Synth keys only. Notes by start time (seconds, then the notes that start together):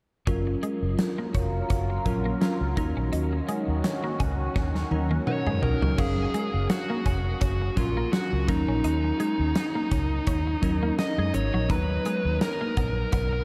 0.26 F#3 C#4 F4 A#4
2.05 F#3 C#4 F4 A#4
2.41 F#3 C#4 F4 A#4
2.76 F#3 C#4 D#4 A#4
4.91 F#3 C#4 D#4 A#4 A#5
5.26 F#3 C#4 D#4 A#4 F#5
5.98 F#3 C#4 A#4 F5
7.76 F#3 C#4 F4 A#4
8.48 F#3 C#4 D#4 A#4
10.62 F#3 C#4 D#4 A#4
11.33 F#3 C#4 D#4 A#4
11.69 F#3 B3 D#4 A#5